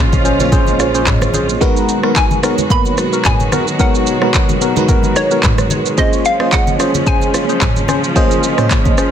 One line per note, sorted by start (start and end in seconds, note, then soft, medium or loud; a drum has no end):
0.00 1.57 A#1 medium
0.00 1.57 C#3 medium
0.00 1.57 F#3 medium
0.00 1.57 G#3 medium
0.00 0.39 A#3 loud
0.00 1.57 C#4 medium
0.00 0.40 F4 medium
0.00 1.57 F4 medium
0.00 0.40 G#4 medium
0.00 0.40 C5 medium
0.00 0.41 C#5 medium
0.00 1.63 D#5 loud
0.00 1.31 F5 loud
0.13 kick medium
0.13 high conga medium
0.13 shaker soft
0.25 0.38 C#4 medium
0.25 0.39 G#4 medium
0.25 0.39 C5 medium
0.25 shaker medium
0.39 0.72 A#3 medium
0.39 0.72 F4 medium
0.39 0.72 G#4 medium
0.39 0.72 C5 medium
0.39 0.72 C#5 loud
0.39 high conga medium
0.39 shaker medium
0.52 0.91 C#4 loud
0.52 0.91 G#4 medium
0.52 0.91 C5 loud
0.52 kick loud
0.52 low conga medium
0.52 shaker medium
0.67 high conga medium
0.67 shaker medium
0.79 1.46 A#3 medium
0.79 1.46 F4 medium
0.79 1.46 G#4 medium
0.79 1.46 C5 medium
0.79 1.46 C#5 loud
0.79 cross-stick medium
0.79 shaker medium
0.94 1.06 C#4 medium
0.94 1.06 G#4 medium
0.94 1.06 C5 medium
0.94 shaker soft
1.07 kick medium
1.07 clap medium
1.07 mid tom medium
1.07 low conga medium
1.07 shaker medium
1.22 cross-stick medium
1.22 high conga medium
1.22 shaker medium
1.34 1.47 C#4 medium
1.34 1.48 G#4 medium
1.34 1.48 C5 medium
1.34 high conga medium
1.34 shaker medium
1.49 shaker medium
1.61 5.94 B2 medium
1.61 5.94 D#3 medium
1.61 9.11 F#3 medium
1.61 1.94 G#3 loud
1.61 9.11 G#3 medium
1.61 2.00 B3 loud
1.61 1.94 D#4 loud
1.61 5.94 F#4 medium
1.61 1.95 F#4 loud
1.61 2.00 F#4 medium
1.61 1.95 A#4 loud
1.61 2.00 A#4 loud
1.61 1.95 B4 loud
1.61 kick loud
1.61 shaker medium
1.77 shaker medium
1.89 shaker medium
2.03 2.36 G#3 medium
2.03 2.15 B3 medium
2.03 2.36 D#4 medium
2.03 2.36 F#4 medium
2.03 2.15 F#4 medium
2.03 2.15 A#4 medium
2.03 2.36 A#4 medium
2.03 2.36 B4 medium
2.03 cross-stick medium
2.16 2.72 G#5 loud
2.16 kick medium
2.16 clap medium
2.16 shaker medium
2.31 high conga medium
2.31 shaker soft
2.43 2.88 G#3 medium
2.43 2.57 B3 medium
2.43 2.88 D#4 medium
2.43 2.57 F#4 medium
2.43 2.88 F#4 medium
2.43 2.57 A#4 medium
2.43 2.88 A#4 medium
2.43 2.88 C#5 medium
2.43 cross-stick medium
2.43 shaker medium
2.58 high conga medium
2.58 shaker medium
2.70 3.09 A#3 loud
2.70 3.09 B3 medium
2.70 3.09 F#4 medium
2.70 3.22 B5 loud
2.70 kick loud
2.70 low conga medium
2.70 shaker medium
2.85 high conga medium
2.85 shaker soft
2.97 3.64 G#3 medium
2.97 3.64 D#4 medium
2.97 3.64 F#4 medium
2.97 3.65 A#4 medium
2.97 3.65 B4 medium
2.97 cross-stick medium
2.97 shaker loud
3.13 3.24 B3 medium
3.13 3.24 F#4 medium
3.13 3.24 A#4 medium
3.13 shaker medium
3.25 3.82 G#5 loud
3.25 kick medium
3.25 clap medium
3.25 mid tom medium
3.25 low conga medium
3.25 shaker medium
3.40 high conga medium
3.40 shaker medium
3.52 3.66 B3 medium
3.52 3.66 F#4 medium
3.52 3.66 A#4 medium
3.52 cross-stick medium
3.52 high conga medium
3.52 shaker medium
3.67 shaker soft
3.79 4.13 G#3 loud
3.79 4.18 B3 loud
3.79 4.13 D#4 medium
3.79 4.18 F#4 medium
3.79 4.13 F#4 medium
3.79 4.18 A#4 loud
3.79 4.13 A#4 medium
3.79 4.13 C#5 loud
3.79 4.85 F#5 medium
3.79 kick loud
3.79 shaker medium
3.95 shaker medium
4.07 shaker medium
4.21 4.64 G#3 medium
4.21 4.33 B3 medium
4.21 4.64 D#4 medium
4.21 4.33 F#4 medium
4.21 4.64 F#4 medium
4.21 4.33 A#4 medium
4.21 4.65 A#4 medium
4.21 4.65 B4 medium
4.21 cross-stick medium
4.34 kick medium
4.34 clap loud
4.34 shaker medium
4.49 high conga medium
4.49 shaker soft
4.61 4.75 B3 medium
4.61 4.75 F#4 medium
4.61 4.75 A#4 medium
4.61 shaker medium
4.76 5.08 G#3 medium
4.76 5.08 D#4 medium
4.76 5.09 F#4 medium
4.76 5.09 A#4 medium
4.76 5.09 B4 loud
4.76 high conga medium
4.76 shaker medium
4.89 5.27 B3 medium
4.89 5.27 F#4 medium
4.89 5.28 A#4 loud
4.89 kick loud
4.89 low conga medium
4.89 shaker medium
5.03 high conga medium
5.03 shaker medium
5.15 5.82 G#3 medium
5.15 5.82 D#4 medium
5.15 5.83 F#4 medium
5.15 5.83 A#4 medium
5.15 6.01 C#5 medium
5.15 5.83 C#5 medium
5.15 cross-stick medium
5.15 shaker loud
5.31 5.42 B3 medium
5.31 5.42 F#4 medium
5.31 5.42 A#4 medium
5.31 shaker soft
5.43 kick loud
5.43 clap medium
5.43 mid tom medium
5.43 low conga medium
5.43 shaker medium
5.58 cross-stick medium
5.58 high conga medium
5.58 shaker medium
5.70 high conga medium
5.70 shaker medium
5.86 shaker soft
5.97 9.11 C#3 medium
5.97 9.11 F3 medium
5.97 6.31 A#3 loud
5.97 6.36 C#4 loud
5.97 9.11 C#4 medium
5.97 6.31 F4 medium
5.97 6.31 G#4 medium
5.97 6.37 G#4 medium
5.97 6.31 C5 medium
5.97 6.37 C5 loud
5.97 6.31 C#5 loud
5.97 6.26 D#5 medium
5.97 kick loud
5.97 shaker medium
6.13 shaker medium
6.25 6.53 F5 medium
6.25 shaker medium
6.39 6.72 A#3 medium
6.39 6.51 C#4 medium
6.39 6.72 F4 medium
6.39 6.72 G#4 medium
6.39 6.51 G#4 medium
6.39 6.72 C5 medium
6.39 6.51 C5 medium
6.39 6.73 D#5 medium
6.39 cross-stick medium
6.52 7.03 F#5 loud
6.52 kick medium
6.52 clap loud
6.52 shaker medium
6.67 high conga medium
6.67 shaker soft
6.79 7.24 A#3 medium
6.79 6.93 C#4 medium
6.79 7.24 F4 medium
6.79 7.24 G#4 medium
6.79 6.93 G#4 medium
6.79 7.24 C5 medium
6.79 6.93 C5 medium
6.79 7.25 C#5 medium
6.79 cross-stick medium
6.79 shaker medium
6.95 high conga medium
6.95 shaker medium
7.07 7.45 C#4 loud
7.07 7.46 G#4 medium
7.07 7.46 C5 loud
7.07 9.11 G#5 loud
7.07 kick loud
7.07 low conga medium
7.07 shaker medium
7.21 high conga medium
7.21 shaker soft
7.33 8.00 A#3 medium
7.33 8.01 F4 medium
7.33 8.01 G#4 medium
7.33 8.01 C5 medium
7.33 8.01 C#5 medium
7.33 cross-stick medium
7.33 shaker loud
7.49 7.60 C#4 medium
7.49 7.60 G#4 medium
7.49 7.60 C5 medium
7.49 shaker medium
7.61 kick medium
7.61 clap medium
7.61 mid tom medium
7.61 low conga medium
7.61 shaker medium
7.76 high conga medium
7.76 shaker medium
7.88 8.02 C#4 medium
7.88 8.02 G#4 medium
7.88 8.02 C5 medium
7.88 cross-stick medium
7.88 high conga medium
7.88 shaker medium
8.04 shaker soft
8.15 8.49 A#3 loud
8.15 8.55 C#4 loud
8.15 8.49 F4 loud
8.15 8.49 G#4 loud
8.15 8.55 G#4 medium
8.15 8.55 C5 loud
8.15 8.49 C5 loud
8.15 8.50 D#5 loud
8.15 kick loud
8.15 shaker medium
8.31 high conga medium
8.31 shaker medium
8.43 shaker medium
8.58 9.00 A#3 medium
8.58 8.69 C#4 medium
8.58 9.01 F4 medium
8.58 8.69 G#4 medium
8.58 9.01 G#4 medium
8.58 8.69 C5 medium
8.58 9.01 C5 medium
8.58 9.01 C#5 medium
8.58 cross-stick medium
8.58 mid tom medium
8.58 shaker medium
8.71 kick medium
8.71 clap medium
8.71 shaker medium
8.85 kick medium
8.85 high conga medium
8.85 shaker soft
8.98 9.11 C#4 medium
8.98 9.11 G#4 medium
8.98 9.11 C5 medium
8.98 cross-stick medium
8.98 shaker medium